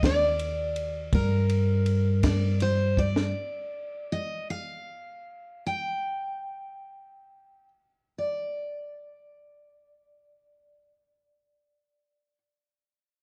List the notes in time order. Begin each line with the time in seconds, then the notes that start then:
Already playing: D#2
0.03 D5, kick, snare, ride
0.39 ride
0.76 ride
1.13 G2 A#4, kick, ride
1.50 ride
1.86 ride
2.23 D5, kick, snare, ride
2.60 C5, ride
2.97 D5, kick
3.16 snare
4.12 D#5
4.50 F5
5.66 G5
8.18 D5